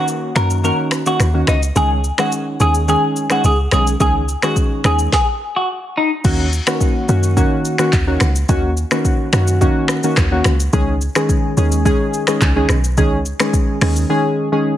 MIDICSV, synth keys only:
0, 0, Header, 1, 2, 480
1, 0, Start_track
1, 0, Tempo, 560748
1, 1508, Time_signature, 4, 2, 24, 8
1, 12647, End_track
2, 0, Start_track
2, 0, Title_t, "Synth keys"
2, 0, Program_c, 0, 88
2, 0, Note_on_c, 0, 51, 73
2, 0, Note_on_c, 0, 58, 67
2, 0, Note_on_c, 0, 61, 66
2, 0, Note_on_c, 0, 66, 82
2, 278, Note_off_c, 0, 51, 0
2, 280, Note_off_c, 0, 58, 0
2, 280, Note_off_c, 0, 61, 0
2, 281, Note_off_c, 0, 66, 0
2, 305, Note_on_c, 0, 51, 75
2, 307, Note_on_c, 0, 58, 66
2, 309, Note_on_c, 0, 61, 66
2, 311, Note_on_c, 0, 66, 82
2, 528, Note_off_c, 0, 51, 0
2, 529, Note_off_c, 0, 58, 0
2, 530, Note_off_c, 0, 61, 0
2, 531, Note_off_c, 0, 66, 0
2, 544, Note_on_c, 0, 51, 87
2, 544, Note_on_c, 0, 58, 81
2, 547, Note_on_c, 0, 61, 80
2, 548, Note_on_c, 0, 66, 93
2, 881, Note_off_c, 0, 51, 0
2, 881, Note_off_c, 0, 58, 0
2, 883, Note_off_c, 0, 61, 0
2, 883, Note_off_c, 0, 66, 0
2, 907, Note_on_c, 0, 51, 77
2, 909, Note_on_c, 0, 58, 70
2, 911, Note_on_c, 0, 61, 70
2, 912, Note_on_c, 0, 66, 85
2, 1088, Note_off_c, 0, 51, 0
2, 1089, Note_off_c, 0, 58, 0
2, 1090, Note_off_c, 0, 61, 0
2, 1090, Note_off_c, 0, 66, 0
2, 1146, Note_on_c, 0, 51, 74
2, 1148, Note_on_c, 0, 58, 68
2, 1150, Note_on_c, 0, 61, 70
2, 1152, Note_on_c, 0, 66, 78
2, 1327, Note_off_c, 0, 51, 0
2, 1328, Note_off_c, 0, 58, 0
2, 1329, Note_off_c, 0, 61, 0
2, 1330, Note_off_c, 0, 66, 0
2, 1501, Note_on_c, 0, 51, 81
2, 1502, Note_on_c, 0, 56, 78
2, 1504, Note_on_c, 0, 61, 77
2, 1506, Note_on_c, 0, 68, 95
2, 1687, Note_off_c, 0, 51, 0
2, 1688, Note_off_c, 0, 56, 0
2, 1688, Note_off_c, 0, 61, 0
2, 1689, Note_off_c, 0, 68, 0
2, 1867, Note_on_c, 0, 51, 73
2, 1868, Note_on_c, 0, 56, 67
2, 1871, Note_on_c, 0, 61, 70
2, 1872, Note_on_c, 0, 68, 79
2, 2197, Note_off_c, 0, 51, 0
2, 2198, Note_off_c, 0, 56, 0
2, 2199, Note_off_c, 0, 61, 0
2, 2200, Note_off_c, 0, 68, 0
2, 2224, Note_on_c, 0, 51, 73
2, 2226, Note_on_c, 0, 56, 67
2, 2227, Note_on_c, 0, 61, 68
2, 2230, Note_on_c, 0, 68, 80
2, 2448, Note_off_c, 0, 51, 0
2, 2449, Note_off_c, 0, 56, 0
2, 2449, Note_off_c, 0, 61, 0
2, 2451, Note_off_c, 0, 68, 0
2, 2464, Note_on_c, 0, 51, 86
2, 2466, Note_on_c, 0, 56, 78
2, 2468, Note_on_c, 0, 61, 81
2, 2469, Note_on_c, 0, 68, 97
2, 2801, Note_off_c, 0, 51, 0
2, 2802, Note_off_c, 0, 56, 0
2, 2803, Note_off_c, 0, 61, 0
2, 2803, Note_off_c, 0, 68, 0
2, 2830, Note_on_c, 0, 51, 75
2, 2831, Note_on_c, 0, 56, 69
2, 2833, Note_on_c, 0, 61, 68
2, 2834, Note_on_c, 0, 68, 87
2, 3009, Note_off_c, 0, 51, 0
2, 3010, Note_off_c, 0, 56, 0
2, 3011, Note_off_c, 0, 61, 0
2, 3011, Note_off_c, 0, 68, 0
2, 3183, Note_on_c, 0, 51, 71
2, 3185, Note_on_c, 0, 56, 64
2, 3186, Note_on_c, 0, 61, 66
2, 3188, Note_on_c, 0, 68, 83
2, 3368, Note_off_c, 0, 51, 0
2, 3369, Note_off_c, 0, 56, 0
2, 3369, Note_off_c, 0, 61, 0
2, 3370, Note_off_c, 0, 68, 0
2, 3425, Note_on_c, 0, 51, 85
2, 3426, Note_on_c, 0, 56, 77
2, 3428, Note_on_c, 0, 61, 76
2, 3430, Note_on_c, 0, 68, 99
2, 3609, Note_off_c, 0, 51, 0
2, 3609, Note_off_c, 0, 56, 0
2, 3610, Note_off_c, 0, 61, 0
2, 3611, Note_off_c, 0, 68, 0
2, 3789, Note_on_c, 0, 51, 74
2, 3791, Note_on_c, 0, 56, 69
2, 3793, Note_on_c, 0, 61, 69
2, 3795, Note_on_c, 0, 68, 81
2, 4118, Note_off_c, 0, 51, 0
2, 4119, Note_off_c, 0, 56, 0
2, 4120, Note_off_c, 0, 61, 0
2, 4121, Note_off_c, 0, 68, 0
2, 4144, Note_on_c, 0, 51, 71
2, 4146, Note_on_c, 0, 56, 67
2, 4148, Note_on_c, 0, 61, 67
2, 4150, Note_on_c, 0, 68, 78
2, 4368, Note_off_c, 0, 51, 0
2, 4369, Note_off_c, 0, 56, 0
2, 4369, Note_off_c, 0, 61, 0
2, 4370, Note_off_c, 0, 68, 0
2, 5344, Note_on_c, 0, 51, 90
2, 5346, Note_on_c, 0, 58, 82
2, 5347, Note_on_c, 0, 61, 82
2, 5349, Note_on_c, 0, 66, 102
2, 5528, Note_off_c, 0, 51, 0
2, 5529, Note_off_c, 0, 58, 0
2, 5530, Note_off_c, 0, 61, 0
2, 5531, Note_off_c, 0, 66, 0
2, 5708, Note_on_c, 0, 51, 73
2, 5710, Note_on_c, 0, 58, 69
2, 5712, Note_on_c, 0, 61, 69
2, 5714, Note_on_c, 0, 66, 83
2, 6038, Note_off_c, 0, 51, 0
2, 6039, Note_off_c, 0, 58, 0
2, 6040, Note_off_c, 0, 61, 0
2, 6041, Note_off_c, 0, 66, 0
2, 6064, Note_on_c, 0, 51, 73
2, 6065, Note_on_c, 0, 58, 69
2, 6067, Note_on_c, 0, 61, 73
2, 6069, Note_on_c, 0, 66, 84
2, 6287, Note_off_c, 0, 51, 0
2, 6288, Note_off_c, 0, 58, 0
2, 6289, Note_off_c, 0, 61, 0
2, 6290, Note_off_c, 0, 66, 0
2, 6303, Note_on_c, 0, 51, 89
2, 6304, Note_on_c, 0, 58, 84
2, 6306, Note_on_c, 0, 61, 82
2, 6308, Note_on_c, 0, 66, 96
2, 6641, Note_off_c, 0, 51, 0
2, 6641, Note_off_c, 0, 58, 0
2, 6642, Note_off_c, 0, 61, 0
2, 6643, Note_off_c, 0, 66, 0
2, 6668, Note_on_c, 0, 51, 82
2, 6671, Note_on_c, 0, 58, 72
2, 6672, Note_on_c, 0, 61, 72
2, 6674, Note_on_c, 0, 66, 89
2, 6848, Note_off_c, 0, 51, 0
2, 6849, Note_off_c, 0, 58, 0
2, 6850, Note_off_c, 0, 61, 0
2, 6851, Note_off_c, 0, 66, 0
2, 6910, Note_on_c, 0, 51, 76
2, 6911, Note_on_c, 0, 58, 70
2, 6912, Note_on_c, 0, 61, 70
2, 6915, Note_on_c, 0, 66, 83
2, 7089, Note_off_c, 0, 51, 0
2, 7090, Note_off_c, 0, 58, 0
2, 7090, Note_off_c, 0, 61, 0
2, 7091, Note_off_c, 0, 66, 0
2, 7265, Note_on_c, 0, 51, 94
2, 7266, Note_on_c, 0, 58, 82
2, 7268, Note_on_c, 0, 61, 84
2, 7270, Note_on_c, 0, 66, 101
2, 7449, Note_off_c, 0, 51, 0
2, 7450, Note_off_c, 0, 58, 0
2, 7451, Note_off_c, 0, 61, 0
2, 7451, Note_off_c, 0, 66, 0
2, 7631, Note_on_c, 0, 51, 75
2, 7632, Note_on_c, 0, 58, 71
2, 7634, Note_on_c, 0, 61, 73
2, 7637, Note_on_c, 0, 66, 84
2, 7960, Note_off_c, 0, 51, 0
2, 7960, Note_off_c, 0, 58, 0
2, 7961, Note_off_c, 0, 61, 0
2, 7962, Note_off_c, 0, 66, 0
2, 7986, Note_on_c, 0, 51, 76
2, 7988, Note_on_c, 0, 58, 69
2, 7990, Note_on_c, 0, 61, 70
2, 7991, Note_on_c, 0, 66, 84
2, 8209, Note_off_c, 0, 51, 0
2, 8210, Note_off_c, 0, 58, 0
2, 8211, Note_off_c, 0, 61, 0
2, 8211, Note_off_c, 0, 66, 0
2, 8226, Note_on_c, 0, 51, 91
2, 8228, Note_on_c, 0, 58, 81
2, 8229, Note_on_c, 0, 61, 83
2, 8230, Note_on_c, 0, 66, 97
2, 8562, Note_off_c, 0, 51, 0
2, 8563, Note_off_c, 0, 58, 0
2, 8563, Note_off_c, 0, 61, 0
2, 8564, Note_off_c, 0, 66, 0
2, 8591, Note_on_c, 0, 51, 80
2, 8593, Note_on_c, 0, 58, 72
2, 8595, Note_on_c, 0, 61, 72
2, 8596, Note_on_c, 0, 66, 88
2, 8770, Note_off_c, 0, 51, 0
2, 8770, Note_off_c, 0, 58, 0
2, 8771, Note_off_c, 0, 61, 0
2, 8772, Note_off_c, 0, 66, 0
2, 8830, Note_on_c, 0, 51, 78
2, 8832, Note_on_c, 0, 58, 73
2, 8833, Note_on_c, 0, 61, 73
2, 8835, Note_on_c, 0, 66, 86
2, 9009, Note_off_c, 0, 51, 0
2, 9010, Note_off_c, 0, 58, 0
2, 9011, Note_off_c, 0, 61, 0
2, 9011, Note_off_c, 0, 66, 0
2, 9184, Note_on_c, 0, 51, 90
2, 9187, Note_on_c, 0, 56, 85
2, 9187, Note_on_c, 0, 61, 83
2, 9190, Note_on_c, 0, 68, 100
2, 9368, Note_off_c, 0, 51, 0
2, 9370, Note_off_c, 0, 56, 0
2, 9370, Note_off_c, 0, 61, 0
2, 9371, Note_off_c, 0, 68, 0
2, 9549, Note_on_c, 0, 51, 80
2, 9552, Note_on_c, 0, 56, 70
2, 9554, Note_on_c, 0, 61, 70
2, 9555, Note_on_c, 0, 68, 85
2, 9879, Note_off_c, 0, 51, 0
2, 9880, Note_off_c, 0, 56, 0
2, 9881, Note_off_c, 0, 61, 0
2, 9881, Note_off_c, 0, 68, 0
2, 9906, Note_on_c, 0, 51, 75
2, 9908, Note_on_c, 0, 56, 70
2, 9910, Note_on_c, 0, 61, 74
2, 9911, Note_on_c, 0, 68, 84
2, 10129, Note_off_c, 0, 51, 0
2, 10130, Note_off_c, 0, 56, 0
2, 10131, Note_off_c, 0, 61, 0
2, 10131, Note_off_c, 0, 68, 0
2, 10145, Note_on_c, 0, 51, 96
2, 10146, Note_on_c, 0, 56, 83
2, 10148, Note_on_c, 0, 61, 85
2, 10149, Note_on_c, 0, 68, 104
2, 10481, Note_off_c, 0, 51, 0
2, 10482, Note_off_c, 0, 56, 0
2, 10483, Note_off_c, 0, 61, 0
2, 10483, Note_off_c, 0, 68, 0
2, 10510, Note_on_c, 0, 51, 78
2, 10513, Note_on_c, 0, 56, 74
2, 10515, Note_on_c, 0, 61, 76
2, 10515, Note_on_c, 0, 68, 89
2, 10689, Note_off_c, 0, 51, 0
2, 10690, Note_off_c, 0, 56, 0
2, 10691, Note_off_c, 0, 61, 0
2, 10692, Note_off_c, 0, 68, 0
2, 10750, Note_on_c, 0, 51, 77
2, 10751, Note_on_c, 0, 56, 75
2, 10753, Note_on_c, 0, 61, 73
2, 10755, Note_on_c, 0, 68, 90
2, 10929, Note_off_c, 0, 51, 0
2, 10929, Note_off_c, 0, 56, 0
2, 10931, Note_off_c, 0, 61, 0
2, 10932, Note_off_c, 0, 68, 0
2, 11105, Note_on_c, 0, 51, 92
2, 11107, Note_on_c, 0, 56, 82
2, 11108, Note_on_c, 0, 61, 83
2, 11110, Note_on_c, 0, 68, 101
2, 11289, Note_off_c, 0, 51, 0
2, 11290, Note_off_c, 0, 56, 0
2, 11291, Note_off_c, 0, 61, 0
2, 11291, Note_off_c, 0, 68, 0
2, 11471, Note_on_c, 0, 51, 76
2, 11472, Note_on_c, 0, 56, 73
2, 11473, Note_on_c, 0, 61, 70
2, 11476, Note_on_c, 0, 68, 83
2, 11799, Note_off_c, 0, 51, 0
2, 11800, Note_off_c, 0, 56, 0
2, 11801, Note_off_c, 0, 61, 0
2, 11802, Note_off_c, 0, 68, 0
2, 11826, Note_on_c, 0, 51, 80
2, 11827, Note_on_c, 0, 56, 71
2, 11829, Note_on_c, 0, 61, 71
2, 11830, Note_on_c, 0, 68, 86
2, 12049, Note_off_c, 0, 51, 0
2, 12049, Note_off_c, 0, 56, 0
2, 12050, Note_off_c, 0, 61, 0
2, 12051, Note_off_c, 0, 68, 0
2, 12065, Note_on_c, 0, 51, 88
2, 12067, Note_on_c, 0, 56, 84
2, 12068, Note_on_c, 0, 61, 81
2, 12070, Note_on_c, 0, 68, 102
2, 12402, Note_off_c, 0, 51, 0
2, 12402, Note_off_c, 0, 56, 0
2, 12403, Note_off_c, 0, 61, 0
2, 12404, Note_off_c, 0, 68, 0
2, 12429, Note_on_c, 0, 51, 83
2, 12430, Note_on_c, 0, 56, 75
2, 12433, Note_on_c, 0, 61, 75
2, 12434, Note_on_c, 0, 68, 89
2, 12609, Note_off_c, 0, 51, 0
2, 12609, Note_off_c, 0, 56, 0
2, 12610, Note_off_c, 0, 61, 0
2, 12611, Note_off_c, 0, 68, 0
2, 12647, End_track
0, 0, End_of_file